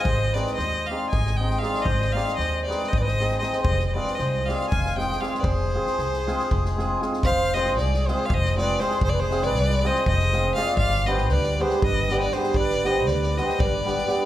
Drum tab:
SD |--ooo----o-ooo|-oooo-oo-ooooo|-o-oo-oo-ooooo|---ooooo-oo-oo|
BD |o-------o-----|o-------o-----|o-------o-----|o-------o-----|

SD |--ooooo--oo-oo|--oooooo-oo-oo|--oooo-o--o-oo|-oo-oooo--ooo-|
BD |o-------o-----|o-------o-----|o-------o-----|o-------o-----|